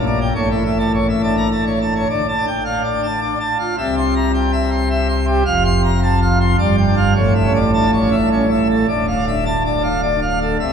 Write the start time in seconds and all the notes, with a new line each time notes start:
Already playing: A#1 A#2
0.06 D5
0.21 G5
0.35 A1 A2 C#5
0.51 E4
0.65 E5
0.79 A5
0.94 C#5
1.09 E5
1.23 D4 A5
1.37 A#5
1.52 A5
1.66 C#5
1.82 A5
1.95 C#5
2.10 D2 D3 D5
2.29 A5
2.37 D4
2.47 G5
2.65 F5
2.84 D5
2.94 D4
3.03 A5
3.21 D4 D5
3.40 A5
3.59 F4
3.78 C2 C3 E5
3.97 C6
4.15 A#5
4.34 G5
4.53 E5
4.72 C6
4.90 E5
5.09 C6
5.27 G4
5.45 F1 F2 F5
5.65 C6
5.84 A#5
6.03 A5
6.22 F5
6.41 C6
6.59 G1 G2 D5
6.78 G5
6.87 D4
6.97 F5
7.16 A1 A2 C#5
7.35 E5
7.45 C#4
7.55 D5
7.74 D4 A5
7.93 C#5
8.03 C#4
8.12 E5
8.32 C#4 C#5
8.50 E5
8.71 A4
8.88 D1 D2 D5
9.08 F5
9.18 D4
9.28 E5
9.46 A5
9.65 D5
9.75 D4
9.84 F5
10.02 D4 D5
10.22 F5
10.41 A4
10.60 C1 C2 E5